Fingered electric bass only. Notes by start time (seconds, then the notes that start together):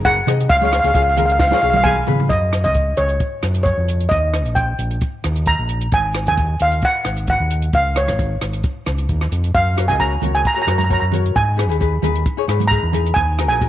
Already playing: F#1
0.27 C3
0.50 C#2
0.84 C#2
0.95 C#2
1.62 B1
2.08 C#3
2.30 F#2
2.65 C#2
2.98 C#2
3.43 F#2
3.77 F2
4.11 D#2
4.46 A#1
4.79 A#1
5.24 D#2
5.59 A#1
5.92 G#1
6.27 D#2
6.60 D#2
7.05 G#1
7.40 D#2
7.73 C#2
8.08 G#1
8.42 G#1
8.87 C#2
9.09 D#2
9.31 F2
9.55 F#2
9.89 C#2
10.22 C#2
10.67 F#2
11.02 F#2
11.36 G#2
11.69 D#2
12.03 D#2
12.48 G#2
12.83 E2
13.16 D#2
13.50 A#1